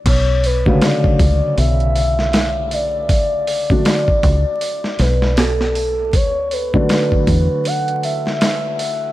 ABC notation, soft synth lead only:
X:1
M:4/4
L:1/8
Q:"Swing 16ths" 1/4=79
K:Bm
V:1 name="Soft synth lead"
c B d d e3 d- | d4- d B A2 | c B3 f e3 |]